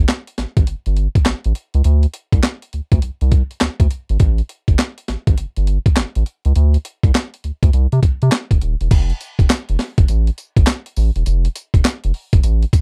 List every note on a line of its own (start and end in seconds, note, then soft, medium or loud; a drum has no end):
0.08 snare medium
0.08 clap medium
0.08 closed hi-hat medium
0.27 closed hi-hat medium
0.38 0.46 A1 soft
0.38 snare medium
0.38 closed hi-hat medium
0.57 0.65 A1 medium
0.57 kick loud
0.57 closed hi-hat medium
0.67 0.75 G1 soft
0.67 closed hi-hat medium
0.86 1.08 G1 medium
0.86 closed hi-hat medium
0.97 closed hi-hat medium
1.15 kick medium
1.15 closed hi-hat medium
1.26 1.34 A1 soft
1.26 snare loud
1.26 clap medium
1.26 closed hi-hat medium
1.44 1.53 A1 medium
1.44 closed hi-hat medium
1.55 closed hi-hat medium
1.74 1.82 C#2 medium
1.74 closed hi-hat soft
1.84 2.06 D2 loud
1.84 closed hi-hat medium
2.03 closed hi-hat soft
2.14 closed hi-hat medium
2.32 2.41 C2 medium
2.32 kick medium
2.32 closed hi-hat soft
2.43 snare loud
2.43 clap medium
2.43 closed hi-hat medium
2.62 closed hi-hat medium
2.73 2.81 D2 medium
2.73 closed hi-hat medium
2.92 3.00 D2 medium
2.92 kick loud
2.92 closed hi-hat medium
3.02 3.10 C2 soft
3.02 closed hi-hat medium
3.21 3.43 C2 medium
3.21 closed hi-hat medium
3.32 kick medium
3.32 closed hi-hat medium
3.51 closed hi-hat medium
3.61 3.69 D2 soft
3.61 snare loud
3.61 clap medium
3.61 closed hi-hat medium
3.80 3.88 D2 medium
3.80 kick medium
3.80 closed hi-hat medium
3.91 closed hi-hat medium
4.09 4.18 G#1 medium
4.09 closed hi-hat medium
4.20 4.41 A1 loud
4.20 kick loud
4.20 closed hi-hat medium
4.38 closed hi-hat medium
4.49 closed hi-hat medium
4.68 4.76 G1 medium
4.68 kick medium
4.68 closed hi-hat soft
4.79 snare medium
4.79 clap medium
4.79 closed hi-hat medium
4.98 closed hi-hat medium
5.08 5.16 A1 medium
5.08 snare medium
5.08 closed hi-hat medium
5.27 5.35 A1 medium
5.27 kick medium
5.27 closed hi-hat medium
5.38 5.46 G1 medium
5.38 closed hi-hat medium
5.56 5.78 G1 medium
5.56 closed hi-hat medium
5.67 closed hi-hat medium
5.86 kick medium
5.86 closed hi-hat medium
5.97 6.05 A1 soft
5.97 snare loud
5.97 clap medium
5.97 closed hi-hat medium
6.15 6.24 A1 medium
6.15 closed hi-hat medium
6.26 closed hi-hat medium
6.45 6.53 C#2 medium
6.45 closed hi-hat soft
6.56 6.77 D2 loud
6.56 closed hi-hat medium
6.74 closed hi-hat medium
6.85 closed hi-hat medium
7.03 7.12 C2 medium
7.03 kick medium
7.03 closed hi-hat soft
7.15 snare loud
7.15 clap medium
7.15 closed hi-hat medium
7.34 closed hi-hat medium
7.44 7.52 D2 medium
7.44 closed hi-hat medium
7.63 7.70 D2 medium
7.63 kick loud
7.63 closed hi-hat medium
7.73 7.87 C2 loud
7.73 closed hi-hat medium
7.92 8.00 C3 medium
7.92 closed hi-hat medium
8.03 kick medium
8.03 closed hi-hat medium
8.22 8.30 C3 loud
8.22 closed hi-hat medium
8.32 snare loud
8.32 clap medium
8.32 closed hi-hat medium
8.51 8.59 E1 loud
8.51 kick medium
8.51 closed hi-hat medium
8.62 8.76 D#1 medium
8.62 closed hi-hat medium
8.81 8.89 E1 medium
8.81 closed hi-hat medium
8.91 9.12 F1 loud
8.91 kick loud
8.91 closed hi-hat medium
8.91 crash loud
8.91 tambourine medium
9.10 closed hi-hat medium
9.21 closed hi-hat medium
9.21 tambourine medium
9.39 9.47 E1 loud
9.39 kick medium
9.39 closed hi-hat soft
9.50 snare loud
9.50 clap medium
9.50 closed hi-hat medium
9.50 tambourine medium
9.69 9.77 F1 medium
9.69 closed hi-hat medium
9.79 snare medium
9.79 open hi-hat medium
9.98 10.06 F1 medium
9.98 kick loud
9.98 closed hi-hat medium
10.08 10.30 A1 medium
10.08 closed hi-hat medium
10.08 tambourine medium
10.27 closed hi-hat medium
10.38 closed hi-hat medium
10.38 tambourine medium
10.57 10.64 G1 medium
10.57 kick loud
10.57 closed hi-hat medium
10.67 snare loud
10.67 clap medium
10.67 closed hi-hat medium
10.67 tambourine medium
10.86 closed hi-hat medium
10.96 11.11 A1 medium
10.96 open hi-hat medium
10.96 tambourine medium
11.16 11.24 E1 medium
11.16 closed hi-hat medium
11.26 11.48 F1 loud
11.26 closed hi-hat medium
11.26 tambourine medium
11.45 closed hi-hat medium
11.56 closed hi-hat medium
11.56 tambourine medium
11.74 11.82 E1 medium
11.74 kick medium
11.74 closed hi-hat soft
11.85 snare loud
11.85 clap medium
11.85 closed hi-hat medium
11.85 tambourine medium
12.04 12.12 F1 medium
12.04 closed hi-hat medium
12.14 open hi-hat medium
12.33 12.41 F1 medium
12.33 kick loud
12.33 closed hi-hat medium
12.43 12.65 A1 loud
12.43 closed hi-hat medium
12.43 tambourine medium
12.63 closed hi-hat medium
12.73 kick medium
12.73 closed hi-hat medium
12.73 tambourine medium